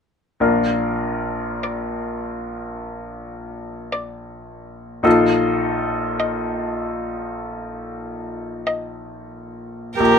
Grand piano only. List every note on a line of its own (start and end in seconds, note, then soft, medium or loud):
0.40 5.01 A#1 soft
0.40 5.01 D4 soft
0.40 5.01 F4 soft
0.40 5.02 A#4 soft
5.03 9.94 A#1 soft
5.03 9.95 D#4 soft
5.03 9.95 F4 soft
5.03 9.95 A4 soft
10.00 10.19 A#1 soft